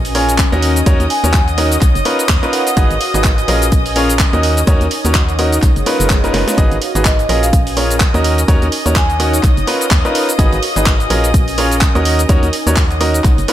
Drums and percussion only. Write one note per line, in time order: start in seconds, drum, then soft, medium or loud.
0.05 open hi-hat medium
0.05 cabasa soft
0.15 open hi-hat loud
0.29 closed hi-hat soft
0.29 cabasa medium
0.38 kick loud
0.38 clap loud
0.38 closed hi-hat medium
0.38 cabasa medium
0.52 closed hi-hat soft
0.52 cabasa soft
0.62 open hi-hat loud
0.76 closed hi-hat soft
0.76 cabasa medium
0.86 kick loud
0.86 closed hi-hat loud
0.86 cabasa medium
1.00 closed hi-hat soft
1.00 cabasa soft
1.10 open hi-hat loud
1.24 closed hi-hat soft
1.24 cabasa medium
1.33 kick loud
1.33 clap loud
1.33 closed hi-hat medium
1.33 cabasa medium
1.48 closed hi-hat soft
1.48 cabasa soft
1.58 open hi-hat loud
1.72 closed hi-hat soft
1.72 cabasa medium
1.81 kick loud
1.81 clap soft
1.81 closed hi-hat medium
1.81 cabasa medium
1.95 closed hi-hat soft
1.95 cabasa soft
2.05 open hi-hat loud
2.19 closed hi-hat soft
2.19 cabasa medium
2.29 kick loud
2.29 clap loud
2.29 closed hi-hat medium
2.29 cabasa medium
2.43 closed hi-hat soft
2.43 cabasa soft
2.53 open hi-hat loud
2.67 closed hi-hat soft
2.67 cabasa medium
2.77 kick loud
2.77 closed hi-hat medium
2.77 cabasa medium
2.91 closed hi-hat soft
2.91 cabasa soft
3.01 open hi-hat loud
3.14 closed hi-hat soft
3.14 cabasa medium
3.24 kick loud
3.24 clap loud
3.24 closed hi-hat medium
3.24 cabasa medium
3.38 closed hi-hat soft
3.38 cabasa soft
3.48 open hi-hat loud
3.62 closed hi-hat soft
3.62 cabasa medium
3.72 kick loud
3.72 closed hi-hat loud
3.72 cabasa medium
3.86 open hi-hat medium
3.86 cabasa soft
3.96 open hi-hat loud
4.09 closed hi-hat soft
4.09 cabasa medium
4.19 kick loud
4.19 clap loud
4.19 closed hi-hat loud
4.19 cabasa medium
4.33 closed hi-hat soft
4.33 cabasa soft
4.43 open hi-hat loud
4.57 closed hi-hat soft
4.57 cabasa medium
4.67 kick loud
4.67 closed hi-hat medium
4.67 cabasa medium
4.81 closed hi-hat soft
4.81 cabasa soft
4.91 open hi-hat medium
5.05 closed hi-hat soft
5.05 cabasa medium
5.14 kick loud
5.14 clap loud
5.14 closed hi-hat medium
5.14 cabasa medium
5.29 closed hi-hat soft
5.29 cabasa soft
5.39 open hi-hat loud
5.52 closed hi-hat soft
5.52 cabasa medium
5.62 kick loud
5.62 clap soft
5.62 closed hi-hat loud
5.62 cabasa medium
5.76 closed hi-hat soft
5.76 cabasa soft
5.86 open hi-hat loud
6.00 closed hi-hat soft
6.00 cabasa medium
6.10 kick loud
6.10 clap loud
6.10 closed hi-hat loud
6.10 cabasa medium
6.24 closed hi-hat soft
6.24 cabasa soft
6.34 snare medium
6.34 open hi-hat loud
6.48 snare medium
6.48 closed hi-hat soft
6.48 cabasa medium
6.58 kick loud
6.58 closed hi-hat loud
6.58 cabasa medium
6.71 closed hi-hat soft
6.71 cabasa soft
6.82 open hi-hat loud
6.95 closed hi-hat soft
6.95 cabasa medium
7.05 kick loud
7.05 clap loud
7.05 closed hi-hat medium
7.05 cabasa medium
7.19 closed hi-hat soft
7.19 cabasa soft
7.29 open hi-hat loud
7.43 closed hi-hat soft
7.43 cabasa medium
7.53 kick loud
7.53 closed hi-hat loud
7.53 cabasa medium
7.67 open hi-hat medium
7.67 cabasa soft
7.77 open hi-hat loud
7.91 closed hi-hat soft
7.91 cabasa medium
8.00 kick loud
8.00 clap loud
8.00 closed hi-hat loud
8.00 cabasa medium
8.14 closed hi-hat soft
8.14 cabasa soft
8.24 open hi-hat loud
8.38 closed hi-hat soft
8.38 cabasa medium
8.48 kick loud
8.48 closed hi-hat medium
8.48 cabasa medium
8.62 closed hi-hat soft
8.62 cabasa soft
8.72 open hi-hat loud
8.86 closed hi-hat soft
8.86 cabasa medium
8.96 kick loud
8.96 clap loud
8.96 closed hi-hat medium
8.96 cabasa medium
9.10 closed hi-hat soft
9.10 cabasa soft
9.20 open hi-hat loud
9.33 closed hi-hat soft
9.33 cabasa medium
9.43 kick loud
9.43 clap soft
9.43 closed hi-hat loud
9.43 cabasa medium
9.57 closed hi-hat soft
9.57 cabasa soft
9.67 open hi-hat loud
9.81 closed hi-hat soft
9.81 cabasa medium
9.91 kick loud
9.91 clap loud
9.91 closed hi-hat loud
9.91 cabasa medium
10.05 closed hi-hat soft
10.05 cabasa soft
10.15 open hi-hat loud
10.29 closed hi-hat soft
10.29 cabasa medium
10.39 kick loud
10.39 closed hi-hat medium
10.39 cabasa medium
10.53 closed hi-hat soft
10.53 cabasa soft
10.63 open hi-hat loud
10.76 closed hi-hat soft
10.76 cabasa medium
10.86 kick loud
10.86 clap loud
10.86 closed hi-hat medium
10.86 cabasa medium
11.00 closed hi-hat soft
11.00 cabasa soft
11.10 open hi-hat loud
11.24 closed hi-hat soft
11.24 cabasa medium
11.34 kick loud
11.34 closed hi-hat medium
11.34 cabasa medium
11.48 open hi-hat medium
11.48 cabasa soft
11.58 open hi-hat loud
11.71 closed hi-hat soft
11.71 cabasa medium
11.81 kick loud
11.81 clap loud
11.81 closed hi-hat loud
11.81 cabasa medium
11.95 closed hi-hat soft
11.95 cabasa soft
12.05 open hi-hat loud
12.19 closed hi-hat soft
12.19 cabasa medium
12.29 kick loud
12.29 closed hi-hat medium
12.29 cabasa medium
12.43 closed hi-hat soft
12.43 cabasa soft
12.53 open hi-hat loud
12.67 closed hi-hat soft
12.67 cabasa medium
12.76 kick loud
12.76 clap loud
12.76 closed hi-hat medium
12.76 cabasa medium
12.91 closed hi-hat soft
12.91 cabasa soft
13.01 open hi-hat loud
13.14 closed hi-hat soft
13.14 cabasa medium
13.24 kick loud
13.24 clap soft
13.24 closed hi-hat medium
13.24 cabasa medium
13.38 closed hi-hat soft
13.38 cabasa soft
13.48 open hi-hat loud